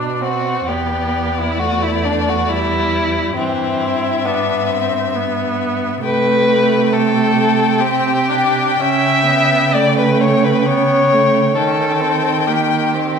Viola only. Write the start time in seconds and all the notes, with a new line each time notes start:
Already playing: D4
0.22 C4
0.68 B3
1.60 A3
2.49 G3
3.36 E3
3.80 E4
4.25 D4
4.71 C4
5.16 B3
6.05 A3
7.81 C4
8.30 D4
8.80 C#4
9.27 B3
9.73 A3
10.67 B3
11.12 A3
11.57 C#4
12.01 C4
12.47 A#3
12.94 C4